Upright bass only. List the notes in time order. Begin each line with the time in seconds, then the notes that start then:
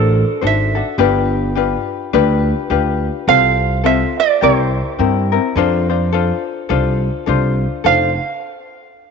Already playing: A1
0.42 G#1
0.98 G1
2.14 D2
2.70 D2
3.28 C2
4.42 C2
4.99 G2
5.56 F2
6.70 C2
7.27 C2
7.85 F1